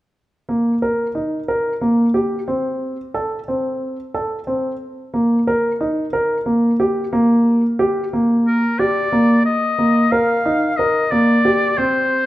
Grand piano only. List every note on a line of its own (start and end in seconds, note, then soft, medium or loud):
0.49 0.73 A#3 soft
0.82 1.06 A#4 soft
1.15 1.39 D#4 soft
1.48 1.72 A#4 medium
1.81 2.05 A#3 soft
2.14 2.38 G4 soft
2.48 2.96 C4 soft
3.14 3.38 A4 medium
3.48 3.96 C4 soft
4.14 4.38 A4 soft
4.47 4.71 C4 soft
5.14 5.38 A#3 soft
5.47 5.71 A#4 medium
5.81 6.04 D#4 soft
6.13 6.37 A#4 medium
6.46 6.70 A#3 soft
6.80 7.04 G4 medium
7.13 7.60 A#3 medium
7.79 8.03 G4 medium
8.13 8.61 A#3 soft
8.79 9.03 G4 soft
9.12 9.36 A#3 medium
9.79 10.02 A#3 soft
10.12 10.36 A#4 medium
10.46 10.69 D#4 medium
10.79 11.03 A#4 medium
11.12 11.36 A#3 medium
11.45 11.69 G4 medium
11.78 12.26 C4 medium